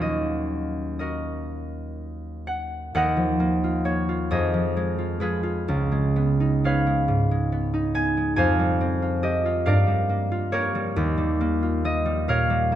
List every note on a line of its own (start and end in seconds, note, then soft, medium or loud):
0.00 2.92 D#2 soft
0.00 3.80 F#3 soft
0.00 2.34 A#3 soft
0.00 2.96 C#4 soft
0.00 2.38 D#4 soft
0.00 3.63 F4 soft
0.00 0.36 C#5 medium
0.00 0.98 D#5 medium
0.00 2.42 F5 medium
0.99 4.35 F#4 soft
0.99 2.95 A#4 soft
0.99 2.95 D#5 medium
2.47 2.94 F#5 medium
2.95 4.34 D#2 medium
2.95 4.35 A#4 medium
2.95 4.30 D#5 medium
2.95 4.34 F#5 medium
3.16 4.53 F3 soft
3.40 3.84 A#3 soft
3.64 4.08 F4 soft
3.85 4.34 A#3 soft
3.85 4.61 C#5 medium
4.09 4.97 F4 soft
4.31 5.70 F2 medium
4.31 5.21 G#4 soft
4.31 5.71 C5 soft
4.31 8.21 D#5 medium
4.54 8.44 F3 soft
4.77 5.19 G#3 soft
4.99 5.21 F4 soft
5.20 5.90 G#3 soft
5.20 5.42 F4 soft
5.20 9.12 G#4 soft
5.20 6.65 B4 medium
5.43 9.01 F4 soft
5.68 8.43 C#2 medium
5.92 6.86 G#3 soft
6.16 6.63 B3 soft
6.40 7.72 D#4 soft
6.64 7.51 B3 soft
6.64 8.44 B4 medium
6.64 8.43 C#5 soft
6.64 8.37 F5 medium
6.87 7.30 G#3 soft
7.08 8.42 G#2 soft
7.31 8.16 G#3 soft
7.52 7.94 B3 soft
7.74 8.42 D#4 soft
7.94 8.42 B3 soft
7.94 8.35 G#5 medium
8.17 9.71 G#3 soft
8.36 9.70 F2 medium
8.36 9.71 C5 medium
8.36 9.64 F5 medium
8.36 9.70 G#5 medium
8.59 9.86 G3 soft
8.81 9.71 C4 soft
9.02 9.44 F4 soft
9.23 10.52 G4 soft
9.23 9.97 D#5 medium
9.46 10.30 F4 soft
9.66 10.99 G2 medium
9.66 10.52 A#4 medium
9.66 10.99 D5 soft
9.66 12.28 F5 medium
9.87 10.74 G3 soft
10.09 10.51 A#3 soft
10.32 11.61 F4 soft
10.52 11.39 A#3 medium
10.52 12.75 G4 medium
10.52 12.28 A#4 medium
10.52 12.28 C#5 medium
10.75 11.16 G3 soft
10.96 12.75 D#2 medium
11.18 12.04 G3 soft
11.41 11.83 A#3 medium
11.63 12.75 F4 soft
11.85 12.71 A#3 soft
11.85 12.75 D#5 medium
12.05 12.49 G3 soft
12.28 12.75 A#2 soft
12.28 12.75 A#4 medium
12.28 12.75 C#5 medium
12.28 12.75 F5 medium
12.50 12.75 G3 soft
12.72 12.75 A#3 medium